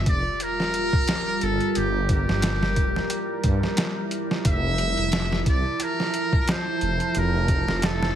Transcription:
0.00 4.41 G3 medium
0.00 1.73 F4 medium
0.00 4.41 A#4 medium
0.00 sub drop medium
0.06 0.23 F1 medium
0.06 0.44 D5 medium
0.06 kick loud
0.06 closed hi-hat medium
0.40 1.45 A#4 loud
0.40 closed hi-hat medium
0.60 snare soft
0.74 closed hi-hat medium
0.93 kick medium
1.08 snare loud
1.08 closed hi-hat medium
1.41 1.59 G1 loud
1.41 1.71 A4 medium
1.41 closed hi-hat medium
1.61 closed hi-hat soft
1.71 8.15 E4 medium
1.71 1.78 A4 medium
1.71 closed hi-hat medium
1.77 2.25 G1 medium
1.77 2.10 G4 medium
2.09 3.41 G4 medium
2.09 kick loud
2.09 closed hi-hat medium
2.29 2.74 G1 medium
2.29 snare medium
2.42 snare loud
2.42 closed hi-hat medium
2.63 snare medium
2.76 2.93 F1 medium
2.76 kick loud
2.76 closed hi-hat medium
2.96 snare soft
3.10 closed hi-hat medium
3.44 3.61 G2 medium
3.44 kick loud
3.44 closed hi-hat medium
3.63 snare soft
3.77 snare loud
3.77 closed hi-hat medium
4.11 closed hi-hat medium
4.31 snare soft
4.45 4.94 F1 loud
4.45 8.15 F3 medium
4.45 5.44 E5 loud
4.45 8.15 A5 medium
4.45 kick loud
4.45 closed hi-hat medium
4.78 closed hi-hat medium
4.97 5.44 F1 medium
4.97 closed hi-hat soft
5.12 snare loud
5.12 closed hi-hat medium
5.32 snare medium
5.46 5.63 C2 medium
5.46 5.85 D5 medium
5.46 kick medium
5.46 closed hi-hat medium
5.80 6.52 A#4 loud
5.80 closed hi-hat medium
6.00 snare soft
6.14 closed hi-hat medium
6.33 kick medium
6.48 7.20 C5 medium
6.48 snare loud
6.48 closed hi-hat medium
6.81 6.98 F1 loud
6.81 closed hi-hat medium
7.00 closed hi-hat soft
7.15 7.64 F1 loud
7.15 7.87 A#4 medium
7.15 closed hi-hat medium
7.48 kick medium
7.48 closed hi-hat medium
7.68 8.14 F1 medium
7.68 snare soft
7.82 8.15 A4 medium
7.82 snare loud
7.82 closed hi-hat medium
8.03 snare medium

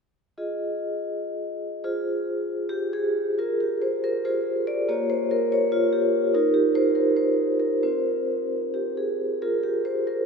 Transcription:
0.38 1.81 F4 soft
0.38 1.81 G#4 soft
0.38 1.81 D#5 soft
1.84 3.35 F4 medium
1.84 2.92 G#4 soft
1.84 3.34 C5 soft
2.69 2.92 G4 medium
2.93 3.37 G#4 medium
3.38 4.23 F4 soft
3.38 4.23 G#4 soft
3.38 3.61 A#4 medium
3.60 3.83 G4 medium
3.82 4.04 C5 medium
4.04 4.24 A#4 medium
4.25 4.87 F4 soft
4.25 4.88 G#4 soft
4.25 4.88 A#4 soft
4.25 4.68 C5 medium
4.67 4.89 D5 medium
4.88 6.31 A#3 soft
4.88 5.71 F4 soft
4.88 5.91 G4 soft
4.88 5.11 C#5 medium
5.10 5.31 C5 medium
5.31 5.52 A#4 medium
5.52 5.73 C#5 medium
5.72 5.94 F4 medium
5.93 6.33 G4 medium
6.34 7.80 D#4 medium
6.34 7.80 F4 soft
6.34 6.53 G4 soft
6.34 6.56 A#4 medium
6.54 6.76 G4 medium
6.75 6.97 C5 medium
6.95 7.18 A#4 medium
7.17 7.61 C5 medium
7.59 7.82 A#4 medium
7.83 9.37 C4 soft
7.83 9.37 F4 soft
7.83 9.37 A#4 soft
7.83 8.74 C5 medium
8.74 8.97 G4 medium
8.97 9.41 G#4 soft
9.42 10.25 F4 soft
9.42 10.25 G#4 soft
9.42 9.64 A#4 medium
9.63 9.85 G4 medium
9.85 10.06 C5 medium
10.07 10.26 A#4 medium

